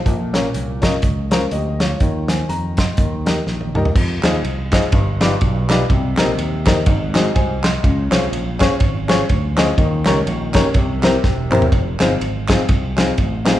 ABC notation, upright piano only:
X:1
M:4/4
L:1/8
Q:"Swing" 1/4=124
K:Fm
V:1 name="Upright piano"
z [DFBd] z [DFBe] z [DFBc] [Ge] [Fd]- | [Fd] [ca] b [ec']2 [EGBe] z [EGBe] | z [EFAce] z [EFAce] z [EFG=B=d] z [EFGBd] | z [EGBce] z [EGBce] z [E_GAce] [ca] [ec']- |
[ec'] [DFAcd] z [DFAcd] z [DFAcd] z [DFAce] | z [DEGBd] z [DEGBd] z [C=EGBc] z [CEGBc] | z [CEFAc] z [CEFAc] z [CEFAc] z [CEFAc] |]
V:2 name="Upright piano" clef=bass
B,,3 z4 z | E,3 z E,3 z | z4 G,,3 z | C,3 z A,,3 z |
D,3 z4 z | E,3 z C,3 z | z8 |]